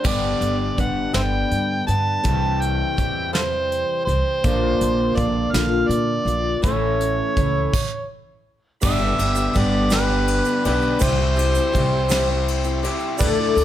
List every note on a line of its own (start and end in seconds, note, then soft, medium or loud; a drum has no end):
0.04 0.33 G1 medium
0.04 0.78 G2 medium
0.04 0.78 D3 medium
0.04 0.77 G3 medium
0.04 0.77 B3 medium
0.04 0.78 D4 medium
0.04 0.79 G4 medium
0.04 0.79 D5 medium
0.04 kick loud
0.04 crash loud
0.41 0.69 G1 medium
0.41 closed hi-hat medium
0.78 1.07 G1 medium
0.78 1.13 G3 medium
0.78 1.13 B3 medium
0.78 1.13 D4 medium
0.78 1.12 G4 medium
0.78 1.13 F#5 medium
0.78 kick medium
0.78 closed hi-hat medium
1.13 1.42 G1 medium
1.13 1.88 G2 medium
1.13 1.88 D3 medium
1.13 1.88 G3 medium
1.13 1.87 B3 medium
1.13 1.86 D4 medium
1.13 1.86 G4 medium
1.13 1.21 C5 medium
1.13 1.20 E5 medium
1.13 1.84 G5 loud
1.13 snare loud
1.13 closed hi-hat medium
1.51 1.79 G2 medium
1.51 closed hi-hat medium
1.87 2.16 G2 medium
1.87 2.23 G3 soft
1.87 2.24 B3 soft
1.87 2.24 D4 soft
1.87 2.23 G4 medium
1.87 2.62 A5 loud
1.87 closed hi-hat medium
2.23 2.81 C2 loud
2.23 2.97 C3 medium
2.23 2.96 E3 medium
2.23 2.97 G3 medium
2.23 2.97 C4 medium
2.23 4.43 E4 medium
2.23 2.98 G4 medium
2.23 kick loud
2.23 closed hi-hat medium
2.61 3.33 G5 loud
2.61 closed hi-hat medium
2.97 3.82 E2 medium
2.97 3.33 E3 medium
2.97 3.33 G3 medium
2.97 3.32 C4 medium
2.97 3.32 G4 medium
2.97 kick medium
2.97 closed hi-hat medium
3.33 4.08 C3 soft
3.33 4.07 E3 medium
3.33 4.07 G3 medium
3.33 4.07 C4 medium
3.33 3.39 F4 medium
3.33 4.06 G4 medium
3.33 3.41 A4 medium
3.33 4.03 C5 loud
3.33 snare loud
3.33 closed hi-hat medium
3.72 closed hi-hat medium
4.05 4.21 C2 medium
4.05 4.44 G3 soft
4.05 4.44 C4 soft
4.05 4.44 G4 medium
4.05 5.17 C5 loud
4.05 closed hi-hat medium
4.44 4.72 A#1 loud
4.44 5.17 A#2 medium
4.44 5.14 D3 medium
4.44 5.15 A#3 medium
4.44 5.15 D4 medium
4.44 5.16 F4 medium
4.44 kick loud
4.44 closed hi-hat medium
4.81 5.09 A#1 loud
4.81 closed hi-hat medium
5.15 5.46 A#1 medium
5.15 5.53 D3 medium
5.15 5.53 A#3 medium
5.15 5.53 D4 medium
5.15 5.53 F4 medium
5.15 5.53 D5 medium
5.15 kick medium
5.15 closed hi-hat medium
5.51 5.82 A#1 medium
5.51 6.26 D4 medium
5.51 6.25 F4 medium
5.51 5.89 F5 medium
5.51 snare loud
5.51 closed hi-hat medium
5.55 6.28 A#2 medium
5.55 6.28 D3 medium
5.55 6.27 A#3 medium
5.87 6.18 A#2 medium
5.87 6.62 D5 loud
5.87 closed hi-hat medium
6.25 6.54 A#1 medium
6.25 6.63 A#3 soft
6.25 6.63 D4 soft
6.25 6.63 F4 soft
6.25 closed hi-hat medium
6.62 7.19 A1 loud
6.62 7.36 A2 medium
6.62 7.35 E3 medium
6.62 7.36 A3 medium
6.62 7.37 C#4 medium
6.62 7.37 E4 medium
6.62 8.05 C#5 medium
6.62 kick loud
6.62 closed hi-hat loud
7.01 closed hi-hat medium
7.36 7.64 C#2 medium
7.36 7.73 E3 medium
7.36 7.73 A3 medium
7.36 7.74 C#4 medium
7.36 7.74 E4 medium
7.36 kick medium
7.36 closed hi-hat medium
7.74 kick loud
7.74 crash loud
8.80 9.11 G1 loud
8.80 9.00 G2 medium
8.80 9.00 D3 medium
8.80 9.00 G3 medium
8.80 9.00 B3 medium
8.80 9.78 D4 medium
8.80 8.99 D4 medium
8.80 10.98 G4 medium
8.80 9.78 G4 medium
8.80 8.98 G4 medium
8.80 9.78 B4 medium
8.80 10.99 D5 medium
8.80 9.58 E5 loud
8.80 10.98 B5 medium
8.80 kick loud
8.80 crash loud
8.80 shaker loud
9.00 9.37 G3 soft
9.00 9.36 B3 soft
9.00 9.35 D4 medium
9.00 9.34 G4 medium
9.18 9.47 G1 medium
9.18 9.54 G3 medium
9.18 9.54 B3 medium
9.18 9.55 D4 medium
9.18 9.56 G4 medium
9.18 ride medium
9.18 shaker soft
9.35 9.52 G3 soft
9.35 9.53 B3 soft
9.35 9.54 D4 medium
9.35 9.54 G4 medium
9.35 shaker medium
9.54 10.39 G1 loud
9.54 9.91 G3 medium
9.54 9.91 B3 medium
9.54 9.91 D4 medium
9.54 9.92 G4 medium
9.54 9.92 D5 loud
9.54 kick medium
9.54 ride medium
9.54 shaker soft
9.90 10.09 G2 medium
9.90 10.10 D3 medium
9.90 10.10 G3 medium
9.90 10.10 B3 medium
9.90 10.88 D4 medium
9.90 10.09 D4 medium
9.90 10.88 G4 medium
9.90 10.08 G4 medium
9.90 10.88 B4 medium
9.90 10.61 B4 loud
9.90 snare loud
9.90 ride medium
9.90 shaker medium
10.09 10.46 G3 soft
10.09 10.45 B3 soft
10.09 10.44 D4 medium
10.09 10.43 G4 soft
10.28 ride medium
10.44 10.63 G3 soft
10.44 10.64 B3 soft
10.44 10.64 D4 soft
10.44 10.64 G4 soft
10.44 shaker medium
10.64 10.93 B1 medium
10.64 10.99 G3 medium
10.64 11.00 B3 medium
10.64 11.01 D4 medium
10.64 10.73 E4 medium
10.64 10.73 G4 medium
10.64 11.00 G4 medium
10.64 11.03 B4 medium
10.64 ride medium
10.82 shaker soft
10.99 11.57 C2 loud
10.99 11.19 C3 medium
10.99 11.19 G3 medium
10.99 11.19 C4 medium
10.99 11.97 E4 medium
10.99 11.19 E4 medium
10.99 11.97 G4 medium
10.99 11.18 G4 medium
10.99 13.18 G4 medium
10.99 11.97 C5 medium
10.99 12.84 C5 medium
10.99 13.64 E5 medium
10.99 13.18 C6 medium
10.99 kick loud
10.99 ride loud
10.99 shaker medium
11.19 11.55 C4 soft
11.19 11.54 E4 medium
11.19 11.54 G4 medium
11.36 11.72 C4 medium
11.36 11.74 E4 medium
11.36 11.74 G4 medium
11.36 ride medium
11.36 shaker soft
11.55 11.73 C4 soft
11.55 11.74 E4 medium
11.55 11.74 G4 medium
11.55 shaker medium
11.73 12.86 C2 medium
11.73 12.10 G3 medium
11.73 12.10 C4 medium
11.73 12.10 E4 medium
11.73 12.10 G4 medium
11.73 kick medium
11.73 ride medium
11.73 shaker soft
12.09 12.29 C3 medium
12.09 12.29 G3 medium
12.09 12.29 C4 loud
12.09 13.06 E4 medium
12.09 12.28 E4 loud
12.09 13.06 G4 medium
12.09 12.27 G4 medium
12.09 13.07 C5 medium
12.09 snare loud
12.09 ride loud
12.09 shaker medium
12.28 12.65 C4 soft
12.28 12.64 E4 medium
12.28 12.63 G4 medium
12.48 ride medium
12.64 12.82 C4 soft
12.64 12.84 E4 soft
12.64 12.83 G4 medium
12.64 shaker medium
12.83 13.20 G3 medium
12.83 13.20 C4 medium
12.83 13.20 E4 medium
12.83 13.21 G4 medium
12.83 ride medium
12.99 shaker soft
13.18 13.48 D2 loud
13.18 13.38 D3 medium
13.18 13.38 A3 medium
13.18 13.64 E4 medium
13.18 13.38 E4 medium
13.18 13.28 G4 medium
13.18 13.64 A4 medium
13.18 13.37 A4 medium
13.18 13.27 B4 medium
13.18 13.64 D5 medium
13.18 13.64 D6 medium
13.18 kick loud
13.18 ride loud
13.18 shaker medium
13.38 13.64 A3 medium
13.38 13.64 E4 medium
13.38 13.64 A4 medium
13.56 13.64 D2 medium
13.56 13.64 A3 medium
13.56 13.64 E4 medium
13.56 13.64 A4 medium
13.56 ride medium
13.56 shaker soft